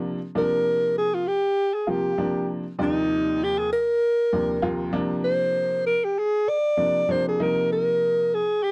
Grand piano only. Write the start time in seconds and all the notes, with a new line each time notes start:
Already playing: C3 F3 A#3 D4
0.35 C3 F3 A#3 D4
1.87 C3 F3 A#3 F4
2.18 C3 F3 A#3 D4
2.79 D#2 C3 F3 A#3 D5
4.32 D#2 C3 F3 A#3 D4
4.62 D#2 C3 F3 A#3 F4
4.93 C3 F3 A#3 D4
6.77 C3 F3 A#3 D4
7.09 C3 F3 A#3 D4
7.40 C3 F3 A#3 D#4